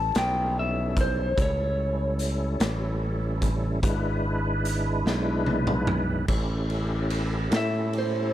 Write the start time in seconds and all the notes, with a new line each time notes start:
Already playing: A1 G3 C#4 E4 A4 A5
0.15 B1 G5, snare, closed hi-hat
0.59 E5
0.97 kick, closed hi-hat
1.01 C5
1.36 C#2 G3 C#4 E4 A4, kick, closed hi-hat
1.42 C#5
2.19 closed hi-hat
2.60 A1, snare, closed hi-hat
3.42 kick, closed hi-hat
3.82 G#1 G#3 D4 E4 B4, kick, closed hi-hat
4.65 closed hi-hat
5.06 B1, snare
5.46 high tom
5.67 mid tom
5.87 mid tom
6.28 A1 C#4 E4 G4 A4, kick, crash
6.70 ride
7.10 ride
7.51 A2, snare, ride
7.56 E5
7.93 ride
7.98 C5